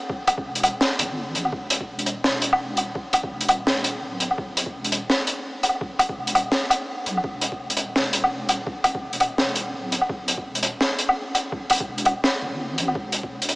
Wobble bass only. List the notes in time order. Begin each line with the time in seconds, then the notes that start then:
0.45 E1
0.99 E1
1.09 G1
1.35 A1
1.52 E1
3.31 E1
3.67 E1
4.02 D1
4.74 E1
6.17 E1
7.06 B1
7.24 E1
9.03 E1
9.38 E1
9.74 D1
10.45 E1
11.88 E1
12.42 E1
12.52 G1
12.78 A1
12.95 E1